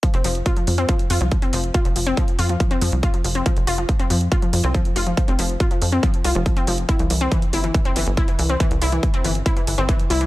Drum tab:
HH |xxoxxxoxxxoxxxox|xxoxxxoxxxoxxxox|xxoxxxoxxxoxxxox|xxoxxxoxxxoxxxox|
BD |o---o---o---o---|o---o---o---o---|o---o---o---o---|o---o---o---o---|

HH |xxoxxxoxxxoxxxox|xxoxxxoxxxoxxxox|
BD |o---o---o---o---|o---o---o---o---|